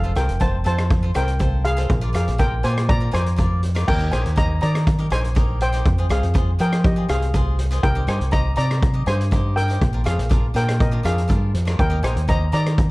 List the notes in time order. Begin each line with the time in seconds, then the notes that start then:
Already playing: F1 A4 F5
0.04 F4 A4 C5
0.15 C2 F4 A4 A#4 C5 G5, cross-stick, closed hi-hat
0.29 F1, closed hi-hat
0.40 F4 A4 C5 A5, kick, closed hi-hat
0.64 F2 F4 A4 C5 A5, closed hi-hat
0.78 cross-stick, closed hi-hat
0.90 kick, closed hi-hat
1.03 F4 A4 C5
1.14 C2 F4 A4 A#4 C5 G5, cross-stick, closed hi-hat
1.28 closed hi-hat
1.39 F4 A4 C5, kick, closed hi-hat
1.65 G#4 F5, closed hi-hat
1.77 F4 A4 C5, closed hi-hat
1.89 A#1, kick, closed hi-hat
2.01 F4 A#4 D5
2.13 F2 F4 G#4 A#4 D5 F5, cross-stick, closed hi-hat
2.28 A#1, closed hi-hat
2.38 F4 A#4 C5 G5, kick, closed hi-hat
2.63 A#2 F4 A#4 C5 D5 G#5, closed hi-hat
2.77 cross-stick, closed hi-hat
2.89 D5 A#5, kick, closed hi-hat
3.00 F4 A#4 D5
3.11 F2 F4 A#4 C5 D5 G#5, cross-stick, closed hi-hat
3.26 closed hi-hat
3.36 F4 A#4 D5, kick, closed hi-hat
3.63 closed hi-hat
3.75 F4 A#4 D5, cross-stick, closed hi-hat
3.88 D#2 A#4 G5, kick, crash
3.99 D#4 G4 A#4
4.11 A#1 D#4 G4 A#4 C5 G#5, cross-stick, closed hi-hat
4.26 D#2, closed hi-hat
4.36 D#4 G4 A#4 D#5 A#5, kick, closed hi-hat
4.61 D#3 D#4 G4 A#4 D5 A#5, closed hi-hat
4.75 cross-stick, closed hi-hat
4.87 kick, closed hi-hat
4.99 D#4 G4 A#4
5.10 A#1 D#4 G4 A#4 C5 G#5, cross-stick, closed hi-hat
5.24 closed hi-hat
5.35 D#4 G4 A#4, kick, closed hi-hat
5.61 C5 G5, closed hi-hat
5.73 D#4 G4 C5, closed hi-hat
5.85 F2, kick, closed hi-hat
5.98 F4 G#4 C5
6.09 C2 F4 G#4 C5 F5, cross-stick, closed hi-hat
6.23 F2, closed hi-hat
6.34 F4 G#4 C5, kick, closed hi-hat
6.59 F3 F4 G#4 A#4 C5 G5, closed hi-hat
6.72 cross-stick, closed hi-hat
6.84 G4 D#5, kick, closed hi-hat
6.96 F4 G#4 C5
7.09 C2 F4 G#4 C5 F5, cross-stick, closed hi-hat
7.22 closed hi-hat
7.34 F4 G#4 C5, kick, closed hi-hat
7.59 closed hi-hat
7.71 F4 G#4 C5, closed hi-hat
7.83 C2 A#4 G5, kick, closed hi-hat
7.95 D#4 G4 C5
8.07 G2 D#4 G4 C5 G#5, cross-stick, closed hi-hat
8.21 C2, closed hi-hat
8.31 D#4 G4 C5 D#5 A#5, kick, closed hi-hat
8.56 C3 D#4 G4 D5 A#5, closed hi-hat
8.71 cross-stick, closed hi-hat
8.83 kick, closed hi-hat
8.94 D#4 G4 D#5
9.06 G2 D#4 G4 C5 G#5, cross-stick, closed hi-hat
9.21 closed hi-hat
9.31 D#4 G4 C5, kick, closed hi-hat
9.56 A#4 G5, closed hi-hat
9.68 D#4 G4 C5, closed hi-hat
9.81 A#1, kick, closed hi-hat
9.93 D4 F4 A#4
10.04 F2 D4 F4 G#4 C5 F5, cross-stick, closed hi-hat
10.18 A#1, closed hi-hat
10.29 D4 F4 A#4, kick, closed hi-hat
10.54 A#2 D4 F4 A#4 G5, closed hi-hat
10.69 cross-stick, closed hi-hat
10.80 A#4 D#5, kick, closed hi-hat
10.91 D4 F4 A#4
11.03 F2 D4 F4 G#4 A#4 F5, cross-stick, closed hi-hat
11.18 closed hi-hat
11.28 G2 D4 F4 A#4, kick, closed hi-hat
11.54 F2, closed hi-hat
11.65 D4 F4 A#4, cross-stick, closed hi-hat
11.79 D#2 A#4 G5, kick, closed hi-hat
11.90 D#4 G4 A#4
12.03 A#1 D#4 G4 A#4 C5 G#5, cross-stick, closed hi-hat
12.16 D#2, closed hi-hat
12.28 D#4 G4 C5 D#5 A#5, kick, closed hi-hat
12.52 D#3 D#4 G4 A#4 D5 A#5, closed hi-hat
12.66 cross-stick, closed hi-hat
12.78 kick, closed hi-hat